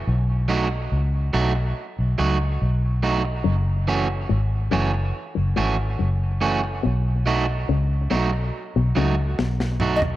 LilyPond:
<<
  \new Staff \with { instrumentName = "Flute" } { \time 4/4 \key b \mixolydian \tempo 4 = 71 r1 | r1 | r2. \tuplet 3/2 { r4 dis''8 } | }
  \new Staff \with { instrumentName = "Clean electric guitar" } { \time 4/4 \key b \mixolydian r8 <fis a dis' fis'>8 r8 <fis a dis' fis'>8 r8 <fis a dis' fis'>8 r8 <fis a dis' fis'>8 | r8 <e a cis' fis'>8 r8 <e a cis' fis'>8 r8 <e a cis' fis'>8 r8 <e a cis' fis'>8 | r8 <fis a dis' fis'>8 r8 <fis a dis' fis'>8 r8 <fis a dis' fis'>8 r8 <fis a dis' fis'>8 | }
  \new Staff \with { instrumentName = "Clean electric guitar" } { \clef bass \time 4/4 \key b \mixolydian r1 | fis,8 r8 gis,8 fis,8 r16 fis,16 gis,8 fis,8 r8 | b,8 r8 cis8 b,8 r16 b,16 cis8 b,8 r8 | }
  \new Staff \with { instrumentName = "Fingered electric bass" } { \clef bass \time 4/4 \key b \mixolydian b,,4 cis,8 b,,8 r16 b,,16 cis,8 b,,4 | fis,,4 gis,,8 fis,,8 r16 fis,,16 gis,,8 fis,,4 | b,,4 cis,8 b,,8 r16 b,,16 cis,8 b,,4 | }
  \new DrumStaff \with { instrumentName = "Drums" } \drummode { \time 4/4 r4 r4 r4 r4 | r4 r4 r4 r4 | r4 r4 r4 sn16 sn16 toml16 tomfh16 | }
>>